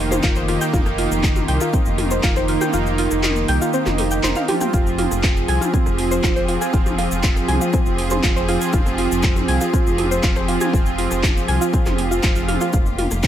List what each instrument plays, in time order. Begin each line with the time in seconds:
Already playing: analog synth bass F1, analog synth pad D#3 A#3 D#4, string section D#3 A#3 F4 G4
0.11 synth arpeggio sound C5 C6, cross-stick, mid tom, shaker
0.23 analog synth bass F1, synth arpeggio sound F4 F5, kick, clap, shaker
0.36 synth arpeggio sound C5 C6, shaker
0.48 analog synth pad D#3 A#3 D#4, synth arpeggio sound F4 F5, cross-stick, open hi-hat
0.61 synth arpeggio sound G5 G6, shaker
0.73 analog synth bass F1, synth arpeggio sound F4 F5, kick, mid tom, shaker
0.86 cross-stick, shaker
0.98 synth arpeggio sound F4 F5, open hi-hat
1.11 analog synth bass F1, shaker
1.23 kick, cross-stick, clap, shaker
1.36 mid tom, shaker
1.48 analog synth bass C2, synth arpeggio sound G5 G6, open hi-hat
1.61 synth arpeggio sound F4 F5, cross-stick, shaker
1.73 synth arpeggio sound C4 C5, kick, shaker
1.86 analog synth bass F1, shaker
1.98 cross-stick, open hi-hat, mid tom
2.11 synth arpeggio sound C5 C6, shaker
2.23 analog synth bass F1, synth arpeggio sound F4 F5, kick, clap, shaker
2.36 synth arpeggio sound C5 C6, cross-stick, shaker
2.48 analog synth pad D#3 A#3 D#4, synth arpeggio sound F4 F5, open hi-hat
2.61 synth arpeggio sound G5 G6, mid tom, shaker
2.73 analog synth bass F1, synth arpeggio sound F4 F5, cross-stick, shaker
2.86 shaker
2.98 synth arpeggio sound F4 F5, open hi-hat
3.11 analog synth bass F1, cross-stick, shaker
3.23 clap, mid tom, shaker
3.36 shaker
3.48 analog synth bass C2, synth arpeggio sound G5 G6, cross-stick, open hi-hat
3.61 synth arpeggio sound F4 F5, shaker
3.73 synth arpeggio sound C4 C5, shaker
3.86 analog synth bass F1, cross-stick, clap, mid tom, shaker
3.98 open hi-hat, high tom
4.11 synth arpeggio sound G5 G6, shaker
4.23 analog synth bass F1, synth arpeggio sound C5 C6, cross-stick, clap, mid tom, shaker
4.35 synth arpeggio sound F5 F6, mid tom, shaker
4.48 analog synth pad F3 C4 F4, synth arpeggio sound G4 G5, open hi-hat, mid tom
4.61 synth arpeggio sound G4 G5, cross-stick, mid tom, shaker
4.73 analog synth bass F1, string section F3 C4 G4 G#4, synth arpeggio sound F4 F5, kick, cross-stick, shaker
4.87 shaker
4.98 synth arpeggio sound F4 F5, open hi-hat, mid tom
5.11 analog synth bass F1, cross-stick, shaker
5.23 kick, clap, shaker
5.37 shaker
5.48 analog synth bass C2, synth arpeggio sound G#5 G#6, cross-stick, open hi-hat
5.61 synth arpeggio sound F4 F5, mid tom, shaker
5.73 synth arpeggio sound C4 C5, kick, shaker
5.86 analog synth bass F1, cross-stick, shaker
5.98 open hi-hat
6.11 synth arpeggio sound C5 C6, shaker
6.23 analog synth bass F1, synth arpeggio sound F4 F5, kick, cross-stick, clap, mid tom, shaker
6.36 synth arpeggio sound C5 C6, shaker
6.48 analog synth pad F3 C4 F4, synth arpeggio sound F4 F5, open hi-hat
6.61 synth arpeggio sound G#5 G#6, cross-stick, shaker
6.73 analog synth bass F1, synth arpeggio sound F4 F5, kick, shaker
6.86 mid tom, shaker
6.98 synth arpeggio sound F4 F5, cross-stick, open hi-hat
7.11 analog synth bass F1, shaker
7.23 kick, clap, shaker
7.36 cross-stick, shaker
7.48 analog synth bass C2, synth arpeggio sound G#5 G#6, open hi-hat, mid tom
7.61 synth arpeggio sound F4 F5, shaker
7.73 synth arpeggio sound C4 C5, kick, cross-stick, shaker
7.86 analog synth bass F1, shaker
7.98 open hi-hat
8.10 synth arpeggio sound C5 C6, cross-stick, mid tom, shaker
8.23 analog synth bass F1, synth arpeggio sound F4 F5, kick, clap, shaker
8.36 synth arpeggio sound C5 C6, shaker
8.48 analog synth pad F3 C4 F4, synth arpeggio sound F4 F5, cross-stick, open hi-hat
8.61 synth arpeggio sound G#5 G#6, shaker
8.73 analog synth bass F1, synth arpeggio sound F4 F5, kick, mid tom, shaker
8.86 cross-stick, shaker
8.98 synth arpeggio sound F4 F5, open hi-hat
9.11 analog synth bass F1, shaker
9.23 kick, cross-stick, clap, shaker
9.36 mid tom, shaker
9.48 analog synth bass C2, synth arpeggio sound G#5 G#6, open hi-hat
9.61 synth arpeggio sound F4 F5, cross-stick, shaker
9.73 synth arpeggio sound C4 C5, kick, shaker
9.86 analog synth bass F1, shaker
9.98 cross-stick, open hi-hat, mid tom
10.11 synth arpeggio sound C5 C6, shaker
10.23 analog synth bass F1, synth arpeggio sound F4 F5, kick, clap, shaker
10.36 synth arpeggio sound C5 C6, cross-stick, shaker
10.48 analog synth pad F3 C4 F4, synth arpeggio sound F4 F5, open hi-hat
10.61 synth arpeggio sound G#5 G#6, mid tom, shaker
10.73 analog synth bass F1, synth arpeggio sound F4 F5, kick, cross-stick, shaker
10.86 shaker
10.98 synth arpeggio sound F4 F5, open hi-hat
11.11 analog synth bass F1, cross-stick, shaker
11.23 kick, clap, mid tom, shaker
11.37 shaker
11.48 analog synth bass C2, synth arpeggio sound G#5 G#6, cross-stick, open hi-hat
11.61 synth arpeggio sound F4 F5, shaker
11.73 synth arpeggio sound C4 C5, kick, shaker
11.86 analog synth bass F1, cross-stick, clap, mid tom, shaker
11.98 open hi-hat
12.11 analog synth pad F3 C4 F4, synth arpeggio sound F4 F5, shaker
12.23 analog synth bass F1, synth arpeggio sound F4 F5, kick, cross-stick, clap, shaker
12.36 synth arpeggio sound F4 F5, shaker
12.48 synth arpeggio sound F5 F6, open hi-hat, mid tom
12.61 synth arpeggio sound F4 F5, cross-stick, shaker
12.73 analog synth bass F1, string section D#3 A#3 F4, synth arpeggio sound F4 F5, kick, cross-stick, shaker
12.86 shaker
12.98 synth arpeggio sound F4 F5, open hi-hat, mid tom
13.11 analog synth bass F1, cross-stick, shaker
13.23 kick, clap, shaker